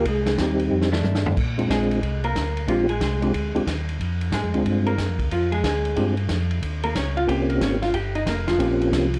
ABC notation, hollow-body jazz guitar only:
X:1
M:4/4
L:1/8
Q:"Swing" 1/4=183
K:Bbmix
V:1 name="Hollow-body jazz guitar"
z4 z [E,=A,D]3 | z2 [A,A]3 [B,B]3 | [F,F] [A,A] [A,A]3 z3 | z2 [A,A]3 [B,B]3 |
[F,F] [A,A] [A,A]3 z3 | z [B,B] [_D_d] [Ff] [Gg] [B,B] [Dd] [Ff] | [Gg] [Ee] [B,B] [F,F]4- [F,F] |]